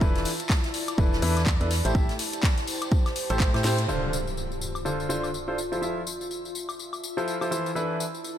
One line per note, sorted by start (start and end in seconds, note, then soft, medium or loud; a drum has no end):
0.00 0.26 E1 medium
0.00 0.29 E3 medium
0.00 0.29 D4 medium
0.00 0.29 E4 medium
0.00 2.60 E4 medium
0.00 0.29 A4 medium
0.00 0.29 B4 loud
0.00 0.66 E5 medium
0.00 4.57 A5 medium
0.00 kick loud
0.00 ride medium
0.00 tambourine soft
0.15 snare medium
0.15 closed hi-hat soft
0.15 tambourine soft
0.25 open hi-hat loud
0.25 ride medium
0.25 tambourine medium
0.34 2.60 D5 medium
0.40 closed hi-hat medium
0.40 tambourine soft
0.50 kick loud
0.50 snare loud
0.50 clap loud
0.50 tambourine medium
0.63 snare medium
0.63 closed hi-hat medium
0.63 tambourine soft
0.73 snare soft
0.73 open hi-hat loud
0.73 ride medium
0.73 tambourine medium
0.88 closed hi-hat medium
0.88 tambourine soft
0.88 high woodblock medium
0.98 1.20 E1 medium
0.98 1.20 E3 medium
0.98 1.20 D4 medium
0.98 1.20 E4 medium
0.98 1.20 A4 medium
0.98 1.20 B4 medium
0.98 kick loud
0.98 ride medium
0.98 tambourine medium
1.12 snare medium
1.12 tambourine soft
1.22 1.58 E2 loud
1.22 1.40 E3 loud
1.22 1.40 D4 medium
1.22 1.40 E4 medium
1.22 1.40 A4 medium
1.22 1.40 B4 loud
1.22 open hi-hat loud
1.22 ride medium
1.22 tambourine medium
1.37 snare medium
1.37 closed hi-hat medium
1.37 tambourine soft
1.37 high woodblock medium
1.46 kick medium
1.46 clap loud
1.46 tambourine medium
1.60 1.82 E2 loud
1.60 1.70 D4 medium
1.60 1.70 E4 medium
1.60 1.69 A4 medium
1.60 1.69 B4 medium
1.60 closed hi-hat soft
1.60 tambourine soft
1.71 4.57 G4 medium
1.71 snare loud
1.71 open hi-hat loud
1.71 ride medium
1.71 tambourine medium
1.85 1.93 A1 medium
1.85 1.93 A3 medium
1.85 1.93 E4 medium
1.85 1.93 G4 medium
1.85 1.93 A4 medium
1.85 1.93 C5 medium
1.85 closed hi-hat medium
1.85 tambourine soft
1.95 2.13 A3 medium
1.95 2.13 E4 medium
1.95 2.13 G4 medium
1.95 2.13 A4 medium
1.95 2.13 E5 medium
1.95 kick loud
1.95 ride medium
1.95 tambourine soft
2.09 snare soft
2.09 closed hi-hat medium
2.09 tambourine soft
2.19 snare soft
2.19 open hi-hat loud
2.19 ride medium
2.19 tambourine medium
2.25 4.57 C5 medium
2.33 closed hi-hat medium
2.33 tambourine soft
2.43 kick loud
2.43 snare loud
2.43 clap loud
2.43 ride loud
2.43 tambourine medium
2.57 snare soft
2.57 closed hi-hat medium
2.57 tambourine soft
2.67 open hi-hat medium
2.67 ride medium
2.67 tambourine loud
2.81 closed hi-hat medium
2.81 tambourine soft
2.81 high woodblock medium
2.91 kick loud
2.91 ride medium
2.91 tambourine soft
3.06 snare soft
3.06 closed hi-hat soft
3.06 tambourine soft
3.06 high woodblock medium
3.16 open hi-hat loud
3.16 ride medium
3.16 tambourine medium
3.30 3.51 A1 medium
3.30 3.50 A3 medium
3.30 3.50 E4 medium
3.30 3.50 G4 medium
3.30 3.50 A4 medium
3.30 3.50 C5 loud
3.30 closed hi-hat medium
3.30 tambourine soft
3.40 kick loud
3.40 clap loud
3.40 tambourine medium
3.54 3.62 A2 loud
3.54 3.63 A3 medium
3.54 3.63 E4 medium
3.54 3.63 G4 medium
3.54 3.63 A4 medium
3.54 3.63 C5 loud
3.54 snare loud
3.54 closed hi-hat soft
3.54 ride medium
3.54 tambourine soft
3.54 high woodblock medium
3.64 3.86 A2 loud
3.64 3.82 E4 medium
3.64 3.82 G4 medium
3.64 3.82 A4 medium
3.64 3.82 C5 loud
3.64 snare medium
3.64 open hi-hat loud
3.64 tambourine medium
3.78 closed hi-hat medium
3.78 ride medium
3.78 tambourine soft
3.88 4.16 D3 medium
3.88 4.16 D4 medium
3.88 4.16 F4 medium
3.88 7.76 F4 medium
3.88 4.16 A4 medium
3.88 4.16 C5 loud
3.88 tambourine soft
3.88 impact medium
4.13 tambourine medium
4.27 tambourine soft
4.37 tambourine soft
4.52 tambourine soft
4.56 6.39 D5 medium
4.61 6.46 C6 medium
4.61 tambourine medium
4.75 tambourine soft
4.75 high woodblock medium
4.85 5.07 D3 medium
4.85 5.07 D4 medium
4.85 5.07 F4 medium
4.85 5.07 A4 medium
4.85 5.07 C5 medium
4.85 tambourine soft
5.00 tambourine soft
5.09 5.27 D3 medium
5.09 5.27 D4 medium
5.09 5.27 F4 medium
5.09 5.27 A4 medium
5.09 5.27 C5 loud
5.09 tambourine medium
5.24 tambourine soft
5.24 high woodblock medium
5.34 tambourine soft
5.48 5.57 D4 medium
5.48 5.57 F4 medium
5.48 5.57 A4 medium
5.48 5.57 C5 medium
5.58 tambourine medium
5.72 5.80 F3 medium
5.72 5.80 E4 medium
5.72 5.80 F4 medium
5.72 5.80 A4 medium
5.72 5.80 C5 medium
5.72 tambourine soft
5.82 6.00 F3 medium
5.82 6.00 E4 medium
5.82 6.00 F4 medium
5.82 6.00 A4 medium
5.82 6.00 E5 medium
5.82 tambourine soft
6.07 tambourine medium
6.21 8.38 E5 medium
6.21 tambourine soft
6.31 8.38 A5 medium
6.31 tambourine soft
6.45 tambourine soft
6.55 tambourine medium
6.69 tambourine soft
6.69 high woodblock medium
6.79 tambourine soft
6.93 tambourine soft
6.93 high woodblock medium
7.04 tambourine medium
7.17 7.37 F3 medium
7.17 7.37 E4 medium
7.17 7.37 F4 medium
7.17 7.37 A4 medium
7.17 7.37 C5 medium
7.17 tambourine soft
7.28 tambourine soft
7.41 7.50 F3 medium
7.41 7.50 E4 medium
7.41 7.50 F4 medium
7.41 7.50 A4 medium
7.41 7.50 C5 medium
7.41 tambourine soft
7.41 high woodblock medium
7.51 7.69 E3 medium
7.51 7.69 E4 medium
7.51 7.69 F4 medium
7.51 7.69 A4 medium
7.51 7.69 C5 medium
7.51 tambourine medium
7.66 tambourine soft
7.75 8.03 E3 medium
7.75 8.03 D4 medium
7.75 8.38 E4 medium
7.75 8.03 E4 medium
7.75 8.03 A4 medium
7.75 8.03 B4 medium
7.75 tambourine soft
8.00 tambourine medium
8.12 8.38 D5 medium
8.12 tambourine soft
8.24 tambourine soft